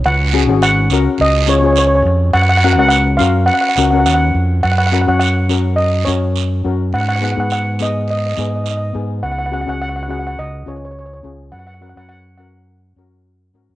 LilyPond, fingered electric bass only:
\new Staff \with { instrumentName = "Fingered electric bass" } { \clef bass \time 4/4 \key fis \major \tempo 4 = 104 cis,8. gis,,8. cis,16 r16 cis,4. eis,8 | fis,8. cis,8. fis,8 r8 cis,8 dis,8 eis,8 | fis,8. fis,4.~ fis,16 fis,4 fis,8 | gis,8. gis,4.~ gis,16 gis,4 gis,8 |
cis,8. cis,4~ cis,16 cis,8 cis,4 cis,8 | fis,8. fis,4.~ fis,16 fis,4 gis,16 fis,16 | }